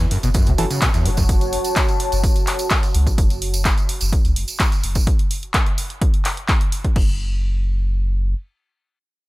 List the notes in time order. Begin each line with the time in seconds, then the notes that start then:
Already playing: F#4 C#5 F#5
0.11 F#2 A5, open hi-hat
0.23 F#1 B2, closed hi-hat, tambourine
0.34 F#2, kick, closed hi-hat, tambourine
0.46 C#2 C#3, closed hi-hat, tambourine
0.58 F#1 E3 C#4 E4 F#4 A4, open hi-hat
0.70 C#3, closed hi-hat, tambourine
0.82 B2, kick, clap, closed hi-hat, tambourine
0.94 E2, closed hi-hat, tambourine
1.05 F#1 A2, open hi-hat
1.17 F#2, kick, closed hi-hat, tambourine
1.29 kick, closed hi-hat, tambourine
1.41 closed hi-hat, tambourine
1.53 open hi-hat
1.64 closed hi-hat, tambourine
1.76 kick, clap, closed hi-hat, tambourine
1.89 closed hi-hat, tambourine
2.00 open hi-hat
2.12 F#1, closed hi-hat, tambourine
2.24 kick, closed hi-hat, tambourine
2.36 closed hi-hat, tambourine
2.47 clap, open hi-hat
2.59 closed hi-hat, tambourine
2.70 kick, clap, open hi-hat, tambourine
2.83 closed hi-hat, tambourine
2.94 C#2, open hi-hat
3.07 kick, closed hi-hat, tambourine
3.18 F#1, kick, closed hi-hat, tambourine
3.30 closed hi-hat, tambourine
3.42 open hi-hat
3.54 closed hi-hat, tambourine
3.65 kick, clap, closed hi-hat, tambourine
3.78 closed hi-hat, tambourine
3.89 open hi-hat
4.01 F#1, closed hi-hat, tambourine
4.13 kick, closed hi-hat
4.25 C#2, closed hi-hat, tambourine
4.36 F#1, open hi-hat
4.48 closed hi-hat, tambourine
4.60 kick, clap, closed hi-hat, tambourine
4.72 closed hi-hat, tambourine
4.83 F#1, open hi-hat
4.95 kick, closed hi-hat, tambourine
5.07 kick, closed hi-hat
5.19 closed hi-hat
5.31 open hi-hat
5.43 closed hi-hat
5.54 kick, clap, closed hi-hat
5.66 closed hi-hat
5.78 open hi-hat
5.90 closed hi-hat
6.02 kick, closed hi-hat
6.14 closed hi-hat
6.25 clap, open hi-hat
6.37 closed hi-hat
6.48 kick, clap, open hi-hat
6.61 closed hi-hat
6.72 open hi-hat
6.85 kick, closed hi-hat
6.96 F#1, kick, crash